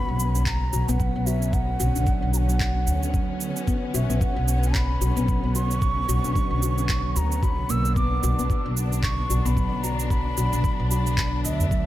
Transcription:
0.00 11.86 D3 medium
0.00 11.86 B3 medium
0.00 7.92 C#4 medium
0.00 0.49 B5 loud
0.00 impact medium
0.08 0.69 B1 medium
0.20 cabasa medium
0.35 cabasa soft
0.46 0.91 A#5 loud
0.46 kick loud
0.46 clap medium
0.46 cabasa soft
0.73 0.85 B1 medium
0.73 0.88 F#4 medium
0.73 cabasa medium
0.89 1.09 B1 loud
0.89 0.99 B3 loud
0.89 1.28 F#5 medium
0.89 cabasa soft
1.00 1.14 F#3 medium
1.00 kick loud
1.00 cabasa soft
1.16 1.76 B1 medium
1.16 1.26 B3 medium
1.27 1.79 F#4 medium
1.27 1.55 E5 medium
1.27 cabasa medium
1.42 cabasa soft
1.53 2.33 F#5 loud
1.53 kick loud
1.53 cabasa soft
1.80 1.92 B1 medium
1.80 1.95 F#4 loud
1.80 cabasa medium
1.95 2.04 B1 medium
1.95 2.06 D4 medium
1.95 cabasa soft
2.07 2.33 F#3 medium
2.07 kick loud
2.07 cabasa soft
2.22 2.83 B1 medium
2.33 2.48 F#4 medium
2.33 2.39 A#5 medium
2.33 cabasa medium
2.38 3.37 F#5 medium
2.49 2.55 F#3 medium
2.49 cabasa soft
2.60 kick loud
2.60 clap medium
2.60 cabasa soft
2.87 3.51 D2 medium
2.87 cabasa medium
3.03 cabasa soft
3.14 3.23 F#3 medium
3.14 kick loud
3.14 cabasa soft
3.41 cabasa medium
3.56 cabasa soft
3.67 3.82 B3 loud
3.67 kick loud
3.67 cabasa soft
3.94 4.07 B1 loud
3.94 4.09 F#4 loud
3.94 4.23 E5 medium
3.94 cabasa medium
4.09 4.19 B1 medium
4.09 4.20 B3 loud
4.09 cabasa soft
4.21 4.36 F#4 medium
4.21 4.77 F#5 medium
4.21 kick loud
4.21 cabasa soft
4.36 4.97 B1 medium
4.48 cabasa medium
4.63 cabasa soft
4.75 5.55 B5 medium
4.75 kick loud
4.75 clap medium
4.75 cabasa soft
5.01 5.13 B1 medium
5.01 5.16 F#4 loud
5.01 cabasa medium
5.16 5.37 B1 loud
5.16 5.27 B3 loud
5.16 cabasa medium
5.28 5.42 F#3 medium
5.28 kick loud
5.28 cabasa soft
5.43 6.04 B1 medium
5.43 5.55 B3 medium
5.55 6.08 F#4 medium
5.55 7.18 C#6 loud
5.55 cabasa medium
5.71 cabasa soft
5.82 kick loud
5.82 cabasa soft
6.09 6.21 B1 medium
6.09 6.24 F#4 loud
6.09 cabasa medium
6.24 6.35 D4 medium
6.24 cabasa soft
6.36 6.61 F#3 medium
6.36 kick loud
6.36 cabasa soft
6.51 7.12 B1 medium
6.63 6.77 F#4 medium
6.63 cabasa medium
6.78 6.85 F#3 medium
6.78 cabasa soft
6.89 kick loud
6.89 clap medium
6.89 cabasa soft
7.16 7.42 D2 medium
7.16 7.30 F#4 medium
7.16 7.44 A#5 loud
7.16 cabasa medium
7.32 cabasa soft
7.43 7.59 D2 medium
7.43 7.57 F#4 medium
7.43 7.72 B5 loud
7.43 kick loud
7.43 cabasa soft
7.59 7.67 B1 medium
7.70 8.19 B1 medium
7.70 7.84 A#3 medium
7.70 7.96 E6 loud
7.70 cabasa medium
7.85 cabasa soft
7.96 8.11 B3 loud
7.96 11.86 D4 medium
7.96 8.72 D6 loud
7.96 kick loud
7.96 cabasa soft
8.23 8.35 B1 medium
8.23 8.38 F#4 medium
8.23 cabasa medium
8.39 8.47 B1 medium
8.39 8.49 B3 loud
8.39 cabasa soft
8.50 8.65 F#4 medium
8.50 kick loud
8.50 cabasa soft
8.66 9.26 B1 medium
8.77 cabasa medium
8.93 cabasa soft
9.03 9.47 C#6 loud
9.03 kick loud
9.03 clap medium
9.03 cabasa soft
9.30 9.42 B1 medium
9.30 9.45 F#4 loud
9.30 cabasa medium
9.45 9.66 B1 loud
9.45 9.56 B3 loud
9.45 9.85 B5 loud
9.45 cabasa soft
9.57 9.71 F#3 medium
9.57 kick loud
9.57 cabasa soft
9.72 10.33 B1 medium
9.72 9.83 B3 medium
9.84 10.36 F#4 medium
9.84 10.11 A#5 loud
9.84 cabasa medium
9.99 cabasa soft
10.10 10.90 B5 loud
10.10 kick loud
10.10 cabasa soft
10.37 10.49 B1 medium
10.37 10.52 F#4 loud
10.37 cabasa medium
10.53 10.62 B1 medium
10.53 10.63 D4 medium
10.53 cabasa soft
10.64 10.90 F#3 medium
10.64 kick loud
10.64 cabasa soft
10.79 11.40 B1 medium
10.91 11.05 F#4 medium
10.91 11.41 B5 loud
10.91 cabasa medium
11.07 11.13 F#3 medium
11.07 cabasa soft
11.18 kick loud
11.18 clap medium
11.18 cabasa soft
11.44 11.86 D2 medium
11.44 11.86 E5 loud
11.44 cabasa medium
11.60 udu medium
11.60 cabasa soft
11.71 11.80 F#3 loud
11.71 kick loud
11.71 cabasa soft

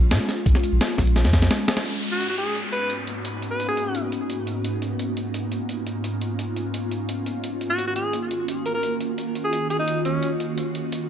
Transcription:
0.00 0.13 A#1 medium
0.00 1.82 G#3 medium
0.00 1.82 C#4 medium
0.00 1.82 F4 medium
0.11 0.19 A#2 medium
0.11 snare loud
0.11 closed hi-hat loud
0.29 snare soft
0.29 closed hi-hat medium
0.29 shaker medium
0.46 0.54 A#1 loud
0.46 kick loud
0.46 closed hi-hat loud
0.55 snare medium
0.55 shaker soft
0.64 closed hi-hat medium
0.64 shaker medium
0.72 0.80 A#1 medium
0.81 snare loud
0.81 closed hi-hat medium
0.98 1.26 A#1 loud
0.98 kick medium
0.98 snare medium
0.98 open hi-hat medium
0.98 shaker medium
1.07 closed hi-hat soft
1.07 shaker soft
1.16 snare medium
1.16 closed hi-hat loud
1.25 1.49 F2 medium
1.25 snare medium
1.33 kick loud
1.33 snare medium
1.33 closed hi-hat medium
1.33 shaker medium
1.42 snare medium
1.51 snare medium
1.51 closed hi-hat loud
1.68 snare loud
1.68 closed hi-hat medium
1.68 shaker medium
1.77 snare medium
1.85 7.22 G#2 medium
1.85 11.09 A#3 medium
1.85 7.22 B3 medium
1.85 11.09 C#4 medium
1.85 7.22 D#4 medium
1.85 4.62 F#4 medium
1.85 closed hi-hat medium
1.85 downlifter medium
2.03 closed hi-hat medium
2.12 2.28 F#4 medium
2.20 closed hi-hat medium
2.29 2.36 F#4 medium
2.38 2.59 G#4 medium
2.38 closed hi-hat medium
2.55 closed hi-hat medium
2.73 2.94 B4 medium
2.73 closed hi-hat medium
2.90 closed hi-hat medium
3.07 closed hi-hat medium
3.25 closed hi-hat medium
3.42 closed hi-hat medium
3.51 3.67 B4 medium
3.60 closed hi-hat medium
3.69 4.04 G#4 medium
3.77 closed hi-hat medium
3.95 closed hi-hat medium
4.12 closed hi-hat medium
4.30 closed hi-hat medium
4.47 closed hi-hat medium
4.65 11.09 F4 medium
4.65 closed hi-hat medium
4.82 closed hi-hat medium
4.99 closed hi-hat medium
5.17 closed hi-hat medium
5.34 closed hi-hat medium
5.52 closed hi-hat medium
5.69 closed hi-hat medium
5.87 closed hi-hat medium
6.04 closed hi-hat medium
6.22 closed hi-hat medium
6.39 closed hi-hat medium
6.56 closed hi-hat medium
6.74 closed hi-hat medium
6.91 closed hi-hat medium
7.09 closed hi-hat medium
7.26 11.09 D#3 medium
7.26 11.09 F#4 medium
7.26 closed hi-hat medium
7.44 closed hi-hat medium
7.61 closed hi-hat medium
7.70 7.86 F#4 medium
7.78 closed hi-hat medium
7.87 7.94 F#4 medium
7.96 8.17 G#4 medium
7.96 closed hi-hat medium
8.13 closed hi-hat medium
8.31 closed hi-hat medium
8.48 closed hi-hat medium
8.66 8.73 A#4 medium
8.66 closed hi-hat medium
8.75 8.96 A#4 medium
8.83 closed hi-hat medium
9.01 closed hi-hat medium
9.18 closed hi-hat medium
9.35 closed hi-hat medium
9.45 9.65 G#4 medium
9.53 closed hi-hat medium
9.70 9.78 G#4 medium
9.70 closed hi-hat medium
9.79 10.00 D#4 medium
9.88 closed hi-hat medium
10.05 10.32 C#4 medium
10.05 closed hi-hat medium
10.23 closed hi-hat medium
10.40 closed hi-hat medium
10.58 closed hi-hat medium
10.75 closed hi-hat medium
10.92 closed hi-hat medium

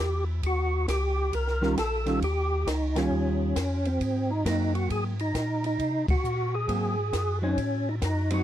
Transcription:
0.00 0.42 E2 medium
0.00 0.25 G4 medium
0.43 0.86 D#2 medium
0.43 0.87 F#4 loud
0.43 kick soft
0.43 ride medium
0.88 1.31 C#2 medium
0.88 1.35 G4 loud
0.88 kick soft
0.88 snare medium
0.88 hi-hat pedal medium
0.88 ride medium
1.32 1.76 C2 medium
1.32 1.75 A#4 medium
1.32 kick soft
1.32 ride medium
1.47 snare soft
1.61 1.76 D#3 medium
1.61 1.76 G3 medium
1.61 1.76 C#4 medium
1.61 1.76 F4 medium
1.61 snare soft
1.77 2.20 A#1 medium
1.77 2.20 A4 medium
1.77 kick soft
1.77 snare medium
1.77 hi-hat pedal medium
1.77 ride medium
2.06 2.20 D#3 medium
2.06 2.20 G3 medium
2.06 2.21 C#4 medium
2.06 2.21 F4 medium
2.06 snare soft
2.06 ride soft
2.21 2.65 D#2 medium
2.21 2.69 G4 loud
2.21 kick soft
2.21 ride medium
2.67 3.10 C#2 medium
2.67 2.97 D#4 medium
2.67 kick soft
2.67 snare medium
2.67 hi-hat pedal medium
2.67 ride medium
2.95 3.53 D#3 medium
2.95 3.53 G3 medium
2.95 3.53 C#4 medium
2.95 3.89 C#4 medium
2.95 3.53 F4 medium
2.95 snare medium
2.95 ride medium
3.10 3.54 D#2 medium
3.56 3.99 F2 medium
3.56 kick soft
3.56 snare medium
3.56 hi-hat pedal medium
3.56 ride medium
3.85 4.32 C4 loud
3.85 ride soft
4.00 4.44 G#2 medium
4.00 kick soft
4.00 ride medium
4.31 4.45 D#4 medium
4.45 4.88 F#2 medium
4.45 5.13 F#3 soft
4.45 5.13 A#3 medium
4.45 5.13 C4 medium
4.45 4.74 D#4 medium
4.45 kick soft
4.45 snare medium
4.45 hi-hat pedal medium
4.45 ride medium
4.75 4.89 F#4 medium
4.75 ride soft
4.90 5.33 G#2 medium
4.90 5.04 G#4 medium
4.90 kick soft
4.90 ride medium
5.19 5.65 D#4 medium
5.19 ride soft
5.34 5.78 A#2 medium
5.34 kick soft
5.34 snare medium
5.34 hi-hat pedal medium
5.34 ride medium
5.64 6.06 D#4 loud
5.64 ride soft
5.79 6.06 C3 medium
5.79 kick soft
5.79 ride medium
6.08 6.16 C3 soft
6.08 6.55 F#4 medium
6.08 kick medium
6.08 ride medium
6.24 6.67 A#2 medium
6.24 hi-hat pedal medium
6.55 7.39 G#4 medium
6.68 7.12 G#2 medium
6.68 6.94 F#3 medium
6.68 6.95 A#3 medium
6.68 6.95 C4 medium
6.68 kick soft
6.68 ride medium
7.13 7.56 F#2 medium
7.13 kick soft
7.13 snare medium
7.13 hi-hat pedal medium
7.13 ride medium
7.42 7.56 F#3 medium
7.42 7.57 C4 medium
7.42 7.89 C#4 medium
7.42 7.57 D#4 medium
7.57 8.01 A2 medium
7.57 kick soft
7.57 ride medium
7.89 7.95 D#4 medium
8.02 8.43 F#2 medium
8.02 8.31 D#4 medium
8.02 kick soft
8.02 snare medium
8.02 hi-hat pedal medium
8.02 ride medium
8.30 8.43 F#3 medium
8.30 8.43 C4 medium
8.30 8.43 D#4 medium
8.30 8.43 F#4 medium
8.30 ride medium

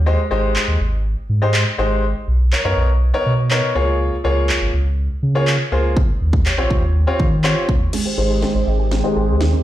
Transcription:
0.00 0.17 D#2 medium
0.06 0.18 G#3 medium
0.06 0.18 D#4 medium
0.06 0.18 G4 medium
0.06 0.18 C5 loud
0.31 0.58 G#1 loud
0.31 0.78 G#3 medium
0.31 0.78 D#4 medium
0.31 0.78 G4 medium
0.31 0.78 C5 medium
0.56 clap loud
0.68 0.77 D#2 medium
0.80 1.16 G#1 loud
1.29 1.65 G#2 medium
1.42 1.59 G#3 medium
1.42 1.59 D#4 medium
1.42 1.59 G4 medium
1.42 1.60 C5 medium
1.54 clap loud
1.78 2.14 G#1 medium
1.78 2.03 G#3 medium
1.78 2.03 D#4 medium
1.78 2.03 G4 medium
1.78 2.03 C5 medium
2.28 2.54 B1 loud
2.52 2.58 A#4 medium
2.52 2.58 C#5 medium
2.52 clap loud
2.65 2.74 F#2 medium
2.65 2.88 B3 medium
2.65 2.88 D#4 medium
2.65 2.88 A#4 medium
2.65 2.88 C#5 loud
2.77 3.13 B1 loud
3.14 3.31 B3 medium
3.14 3.31 D#4 medium
3.14 3.31 A#4 medium
3.14 3.32 C#5 loud
3.26 3.62 B2 medium
3.51 3.74 B3 medium
3.51 3.74 D#4 medium
3.51 3.74 A#4 medium
3.51 3.74 C#5 medium
3.51 clap loud
3.75 4.11 C#2 medium
3.75 4.15 A#3 medium
3.75 4.15 F4 medium
3.75 4.15 G#4 medium
3.75 4.15 C#5 medium
4.24 4.51 C#2 loud
4.24 4.71 A#3 medium
4.24 4.71 F4 medium
4.24 4.71 G#4 medium
4.24 4.71 C#5 medium
4.49 clap loud
4.62 4.70 G#1 medium
4.74 5.09 C#2 loud
5.23 5.58 C#3 medium
5.35 5.53 A#3 medium
5.35 5.53 F4 medium
5.35 5.53 G#4 medium
5.35 5.53 C#5 loud
5.47 clap loud
5.72 6.08 C#2 medium
5.72 5.96 A#3 medium
5.72 5.97 F4 medium
5.72 5.97 G#4 medium
5.72 5.97 C5 medium
5.97 kick loud
6.21 6.48 D#2 loud
6.33 kick medium
6.46 6.52 G4 medium
6.46 6.52 C#5 medium
6.46 clap loud
6.58 6.67 A#1 medium
6.58 6.81 C4 medium
6.58 6.82 F4 medium
6.58 6.82 G4 medium
6.58 6.82 C#5 medium
6.70 7.06 D#2 loud
6.70 kick medium
7.07 7.25 C4 medium
7.07 7.25 F4 medium
7.07 7.25 G4 medium
7.07 7.25 C#5 loud
7.20 7.55 D#3 medium
7.20 kick medium
7.44 7.67 C4 medium
7.44 7.67 F4 medium
7.44 7.68 G4 medium
7.44 7.68 C#5 medium
7.44 clap loud
7.69 7.86 D#2 medium
7.69 kick medium
7.93 9.63 D#3 medium
7.93 9.63 G#3 medium
7.93 8.05 G#3 medium
7.93 9.63 C4 medium
7.93 9.63 G4 medium
7.93 snare soft
7.93 crash medium
8.05 8.11 G4 medium
8.05 8.12 C5 medium
8.18 8.45 G#1 loud
8.18 8.59 G#3 medium
8.18 8.59 D#4 medium
8.18 8.29 D#4 medium
8.18 8.59 G4 medium
8.18 8.59 C5 medium
8.30 8.42 G4 medium
8.42 8.54 G#4 medium
8.42 snare medium
8.55 8.64 G#1 medium
8.55 8.66 C5 medium
8.67 9.03 G#1 loud
8.67 8.78 D#5 medium
8.79 8.91 G5 medium
8.91 snare medium
9.04 9.33 G#3 medium
9.04 9.33 D#4 medium
9.04 9.33 G4 medium
9.04 9.15 C5 medium
9.04 9.33 C5 medium
9.16 9.30 G#1 medium
9.16 9.28 G#4 medium
9.28 9.55 D#2 medium
9.28 9.40 G4 medium
9.41 9.52 D#4 medium
9.41 snare medium
9.53 9.63 C4 medium

